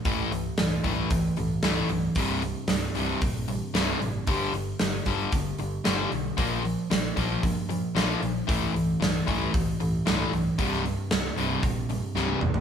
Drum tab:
HH |o-o-o-o-o-o-o-o-|o-o-o-o-o-o-o-o-|o-o-o-o-o-o-o-o-|o-o-o-o-o-o-o-o-|
SD |----o-------o---|----o-------o---|----o-------o---|----o-------o---|
T1 |----------------|----------------|----------------|----------------|
T2 |----------------|----------------|----------------|----------------|
FT |----------------|----------------|----------------|----------------|
BD |o-----o-o-------|o-------o-------|o-----o-o-------|o-----o-o-------|

HH |o-o-o-o-o-o-o-o-|o-o-o-o-o-o-----|
SD |----o-------o---|-o--o-------o---|
T1 |----------------|-------------o--|
T2 |----------------|--------------o-|
FT |----------------|---------------o|
BD |o-----o-o-------|o-------o-------|